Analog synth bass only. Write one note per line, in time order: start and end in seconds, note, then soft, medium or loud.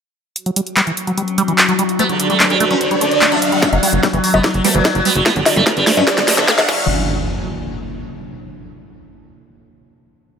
3.73 3.80 F#1 medium
3.93 4.00 F#1 medium
4.13 4.20 F#1 medium
4.34 4.41 F#1 medium
4.54 4.61 F#1 medium
4.75 4.82 F#1 medium
4.95 5.02 F#1 medium
5.16 5.22 F#1 medium
5.36 5.43 G1 medium
5.56 5.63 G1 medium
5.77 5.84 G1 medium
5.97 6.04 G2 medium
6.18 6.25 G1 medium
6.38 6.45 G1 medium
6.58 6.65 G1 medium
6.69 6.88 F#1 loud